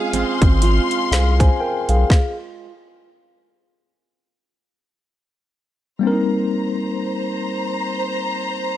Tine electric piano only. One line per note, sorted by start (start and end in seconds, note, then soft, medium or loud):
0.00 1.54 G#3 medium
0.00 1.56 C#4 medium
0.00 1.60 F4 medium
0.00 0.60 C5 medium
1.12 1.39 G#4 medium
1.12 1.39 F5 medium
1.40 1.60 C5 medium
1.40 1.59 G#5 medium
1.60 1.88 A#4 medium
1.60 1.88 G5 medium
1.89 2.36 G#4 medium
1.89 2.36 F5 medium
5.99 8.77 G3 medium
5.99 8.77 A#3 medium
5.99 8.77 C4 medium
6.05 6.12 D4 medium
6.05 8.47 A#4 medium
6.12 8.77 D#4 medium